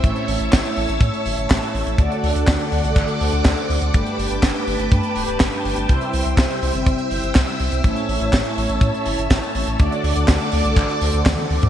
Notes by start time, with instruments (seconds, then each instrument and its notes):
Already playing: string machine E5 E6
0.04 analog synth bass A1, analog polysynth A2 A3 C#4 E4 C#5, string machine C#5 A5, kick, closed hi-hat
0.16 closed hi-hat
0.28 analog synth bass A1, open hi-hat
0.40 analog synth bass A1, closed hi-hat
0.53 analog synth bass A1, kick, snare, clap, closed hi-hat
0.65 closed hi-hat
0.76 analog synth bass A1, analog polysynth A2 A3 C#4 E4 C#5, open hi-hat
0.89 analog synth bass A1, closed hi-hat
1.01 analog synth bass A2, kick, closed hi-hat
1.14 closed hi-hat
1.26 analog synth bass G1, open hi-hat
1.38 analog synth bass G1, closed hi-hat
1.50 analog synth bass A1, kick, snare, clap, closed hi-hat
1.63 closed hi-hat
1.74 analog synth bass A1, open hi-hat
1.87 analog synth bass A1, closed hi-hat
1.98 analog synth bass D2, analog polysynth D3 A3 D4 F#4 D5, string machine A4 D5 F#5 D6, kick, closed hi-hat
2.12 closed hi-hat
2.23 analog synth bass D2, open hi-hat
2.36 analog synth bass D2, closed hi-hat
2.47 analog synth bass D2, kick, snare, clap, closed hi-hat
2.61 closed hi-hat
2.72 analog synth bass D2, analog polysynth D3 A3 D4 F#4 D5, open hi-hat
2.84 analog synth bass C2, closed hi-hat
2.96 analog synth bass A1, kick, clap, closed hi-hat
3.08 closed hi-hat
3.21 analog synth bass D2, analog polysynth D3 A3 D4 F#4 C5, open hi-hat
3.32 analog synth bass D2, closed hi-hat
3.45 analog synth bass D2, kick, snare, clap, closed hi-hat
3.57 closed hi-hat
3.70 analog synth bass D2, open hi-hat
3.82 analog synth bass D2, closed hi-hat
3.94 analog synth bass G1, analog polysynth G2 A3 D4 G4 B4, string machine B4 G5 A5, kick, closed hi-hat
4.06 closed hi-hat
4.18 analog synth bass G1, open hi-hat
4.31 analog synth bass G1, closed hi-hat
4.43 analog synth bass G1, kick, snare, clap, closed hi-hat
4.54 closed hi-hat
4.67 analog synth bass G1, analog polysynth G2 A3 D4 G4 B4, open hi-hat
4.79 analog synth bass G1, closed hi-hat
4.91 analog synth bass G2, kick, closed hi-hat
5.03 closed hi-hat
5.16 analog synth bass D1, open hi-hat
5.28 analog synth bass D1, closed hi-hat
5.40 analog synth bass G1, kick, snare, clap, closed hi-hat
5.53 closed hi-hat
5.65 analog synth bass G1, open hi-hat
5.76 analog synth bass G1, closed hi-hat
5.89 analog synth bass C2, analog polysynth C3 G3 C4 E4 C5, string machine C5 E5 E6, kick, closed hi-hat
6.01 closed hi-hat
6.13 analog synth bass C2, open hi-hat
6.26 analog synth bass C2, closed hi-hat
6.37 analog synth bass C2, kick, snare, clap, closed hi-hat
6.50 closed hi-hat
6.62 analog synth bass C2, analog polysynth C3 G3 C4 E4 C5, open hi-hat
6.75 analog synth bass G1, closed hi-hat
6.86 analog synth bass G1, kick, closed hi-hat
6.99 closed hi-hat
7.11 analog synth bass G1, open hi-hat
7.23 analog synth bass G1, closed hi-hat
7.35 analog synth bass C2, kick, snare, clap, closed hi-hat
7.48 closed hi-hat
7.59 analog synth bass C2, open hi-hat
7.72 analog synth bass C2, closed hi-hat
7.84 analog synth bass A1, analog polysynth A2 A3 C#4 E4 C#5, string machine C#5 A5, kick, closed hi-hat
7.96 closed hi-hat
8.09 analog synth bass A1, open hi-hat
8.20 analog synth bass A1, closed hi-hat
8.33 analog synth bass A1, kick, snare, clap, closed hi-hat
8.45 closed hi-hat
8.57 analog synth bass A1, analog polysynth A2 A3 C#4 E4 C#5, open hi-hat
8.69 analog synth bass A1, closed hi-hat
8.81 analog synth bass A2, kick, closed hi-hat
8.94 closed hi-hat
9.06 analog synth bass G1, open hi-hat
9.19 analog synth bass G1, closed hi-hat
9.30 analog synth bass A1, kick, snare, clap, closed hi-hat
9.43 closed hi-hat
9.55 analog synth bass A1, open hi-hat
9.67 analog synth bass A1, closed hi-hat
9.79 analog synth bass D2, analog polysynth D3 A3 D4 F#4 D5, string machine A4 D5 F#5 D6, kick, closed hi-hat
9.92 closed hi-hat
10.04 analog synth bass D2, open hi-hat
10.16 analog synth bass D2, closed hi-hat
10.28 analog synth bass D2, kick, snare, clap, closed hi-hat
10.40 closed hi-hat
10.52 analog synth bass D2, analog polysynth D3 A3 D4 F#4 D5, open hi-hat
10.65 analog synth bass C2, closed hi-hat
10.76 analog synth bass A1, kick, clap, closed hi-hat
10.89 closed hi-hat
11.01 analog synth bass D2, analog polysynth D3 A3 D4 F#4 C5, open hi-hat
11.13 analog synth bass D2, closed hi-hat
11.26 analog synth bass D2, kick, snare, clap, closed hi-hat, high tom
11.38 closed hi-hat, high tom
11.50 analog synth bass D2, open hi-hat
11.62 analog synth bass D2, closed hi-hat, mid tom